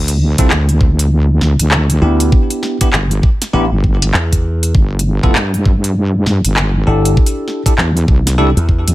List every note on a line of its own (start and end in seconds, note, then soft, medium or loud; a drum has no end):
0.00 0.36 D2 loud
0.08 closed hi-hat medium
0.38 0.49 C2 loud
0.38 0.50 C4 medium
0.38 0.50 E4 medium
0.38 0.50 F4 medium
0.38 0.50 A4 medium
0.38 kick loud
0.38 closed hi-hat medium
0.50 1.39 D2 loud
0.50 clap loud
0.69 closed hi-hat soft
0.81 kick medium
0.99 closed hi-hat medium
1.41 1.57 D2 loud
1.41 snare medium
1.60 2.00 D2 medium
1.60 closed hi-hat medium
1.71 clap loud
1.90 closed hi-hat medium
2.02 2.30 D2 medium
2.02 2.76 B3 medium
2.02 2.77 D4 medium
2.02 2.77 E4 medium
2.02 2.77 G4 medium
2.20 closed hi-hat medium
2.32 kick loud
2.50 closed hi-hat medium
2.63 snare soft
2.81 2.88 B3 medium
2.81 2.88 D4 medium
2.81 2.88 E4 medium
2.81 2.88 G4 medium
2.81 kick loud
2.81 closed hi-hat medium
2.93 3.21 G1 medium
2.93 clap loud
3.11 closed hi-hat soft
3.23 kick loud
3.42 snare medium
3.42 closed hi-hat medium
3.53 3.69 A1 medium
3.53 3.64 B3 medium
3.53 3.64 D4 medium
3.53 3.64 E4 medium
3.53 3.64 G4 loud
3.72 4.12 G1 medium
3.84 kick medium
4.02 closed hi-hat medium
4.14 4.73 E2 medium
4.14 clap loud
4.33 kick medium
4.33 closed hi-hat medium
4.63 closed hi-hat medium
4.75 5.20 G1 loud
4.75 kick loud
4.99 closed hi-hat medium
5.23 5.33 F1 loud
5.23 5.34 B3 medium
5.23 5.34 E4 medium
5.23 5.34 F4 medium
5.23 5.34 A4 loud
5.23 kick loud
5.35 6.24 G2 loud
5.35 clap loud
5.54 closed hi-hat soft
5.66 kick loud
5.84 closed hi-hat medium
6.26 6.42 G2 loud
6.26 snare soft
6.45 6.85 G1 medium
6.45 closed hi-hat medium
6.56 clap loud
6.87 7.15 G1 medium
6.87 7.62 D4 medium
6.87 7.62 E4 medium
6.87 7.61 G4 medium
6.87 7.62 A4 medium
7.05 closed hi-hat medium
7.17 kick loud
7.26 closed hi-hat medium
7.48 snare soft
7.66 7.73 D4 medium
7.66 7.73 E4 medium
7.66 7.73 G4 medium
7.66 7.73 A4 medium
7.66 kick loud
7.66 closed hi-hat medium
7.78 8.06 E2 loud
7.78 clap loud
7.97 closed hi-hat soft
8.08 8.54 C2 loud
8.08 kick loud
8.27 snare soft
8.27 closed hi-hat medium
8.38 8.49 D4 medium
8.38 8.49 E4 medium
8.38 8.49 G4 medium
8.38 8.49 A4 loud
8.57 8.84 E2 medium
8.57 closed hi-hat soft
8.69 kick medium
8.87 8.95 E2 medium
8.87 closed hi-hat medium